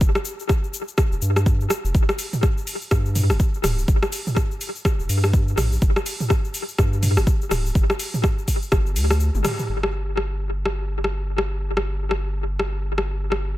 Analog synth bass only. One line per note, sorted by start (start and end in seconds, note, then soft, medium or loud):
0.01 0.13 G1 loud
1.12 1.20 F1 medium
1.22 1.67 G2 medium
1.84 1.92 F1 medium
1.95 2.06 G1 loud
2.91 3.31 G2 medium
3.30 3.38 G1 loud
3.64 3.84 D1 medium
3.88 4.00 G1 loud
4.99 5.07 F1 medium
5.09 5.54 G2 medium
5.57 5.78 A#1 loud
5.82 5.93 G1 loud
6.79 7.18 G2 medium
7.17 7.25 G1 loud
7.51 7.71 D1 medium
7.75 7.87 G1 loud
8.72 8.97 G1 medium
8.96 9.30 D2 loud
9.34 9.42 G1 medium
9.69 13.58 G1 medium